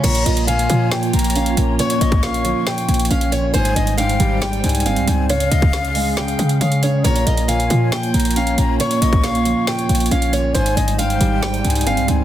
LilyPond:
<<
  \new Staff \with { instrumentName = "Flute" } { \time 4/4 \key bes \dorian \tempo 4 = 137 bes''4 aes''4. bes''4 bes''8 | des'''2. r4 | aes''4 g''4. aes''4 aes''8 | f''2. r4 |
bes''4 aes''4. bes''4 bes''8 | des'''2. r4 | aes''4 g''4. aes''4 aes''8 | }
  \new Staff \with { instrumentName = "Steel-string acoustic guitar" } { \time 4/4 \key bes \dorian des''8 ees''8 f''4 g''4 f''8 r8 | des''8 ees''8 f''4 g''4 f''8 des''8 | c''8 ees''8 f''4 g''4 f''8 r8 | des''8 ees''8 f''4 g''4 f''8 des''8 |
des''8 ees''8 f''4 g''4 f''8 r8 | des''8 ees''8 f''4 g''4 f''8 des''8 | c''8 ees''8 f''4 g''4 f''8 r8 | }
  \new Staff \with { instrumentName = "Analog synth pad" } { \time 4/4 \key bes \dorian <bes f' des''>1~ | <bes f' des''>1 | <g ees' c''>1 | <des' aes' f''>1 |
<bes f' des''>1~ | <bes f' des''>1 | <g ees' c''>1 | }
  \new Staff \with { instrumentName = "Felt piano" } { \clef bass \time 4/4 \key bes \dorian bes,8 bes,8 bes,8 f4 bes,8 des'8 bes,8 | bes,8 bes,8 bes,8 f8 bes,8 bes,8 des'8 bes,8 | aes,8 aes,8 aes,8 g8 aes,8 aes,8 c'8 aes,8 | des8 des8 des8 aes8 des8 des8 des''8 des8 |
bes,8 bes,8 bes,8 f8 bes,8 bes,8 des'8 bes,8 | bes,8 bes,8 bes,8 f8 bes,8 bes,8 des'8 bes,8 | aes,8 aes,8 aes,8 g8 aes,8 aes,8 c'8 aes,8 | }
  \new Staff \with { instrumentName = "808-style bass" } { \clef bass \time 4/4 \key bes \dorian bes,,8 bes,,4 bes,4 bes,,4 bes,,8 | r8 bes,,4~ bes,,16 r8. bes,,8 bes,,4 | aes,,8 aes,,4 aes,,4 c,8 g,,16 c,16 des,8~ | des,8 des,2 des8 des4 |
bes,,8 bes,,4 bes,4 bes,,4 bes,,8 | r8 bes,,4~ bes,,16 r8. bes,,8 bes,,4 | aes,,8 aes,,4 aes,,4 c,8 g,,16 c,16 des,8 | }
  \new DrumStaff \with { instrumentName = "Drums" } \drummode { \time 4/4 <cymc hh>16 hh16 hh16 hh16 hh16 hh16 hh8 <hh sn>16 hh16 hh32 hh32 hh32 hh32 hh16 hh16 hh8 | hh16 hh16 hh16 <hh bd>16 <hh sn>16 hh16 hh8 <hh sn>16 hh16 hh32 hh32 hh32 hh32 hh16 hh16 hh8 | hh16 hh16 hh16 hh16 hh16 hh16 hh8 <hh sn>16 hh16 hh32 hh32 hh32 hh32 hh16 hh16 hh8 | hh16 hh16 hh16 <hh bd>16 <hh sn>16 hh16 hho8 sn16 hh16 hh16 hh16 hh16 hh16 hh8 |
hh16 hh16 hh16 hh16 hh16 hh16 hh8 <hh sn>16 hh16 hh32 hh32 hh32 hh32 hh16 hh16 hh8 | hh16 hh16 hh16 <hh bd>16 <hh sn>16 hh16 hh8 <hh sn>16 hh16 hh32 hh32 hh32 hh32 hh16 hh16 hh8 | hh16 hh16 hh16 hh16 hh16 hh16 hh8 <hh sn>16 hh16 hh32 hh32 hh32 hh32 hh16 hh16 hh8 | }
>>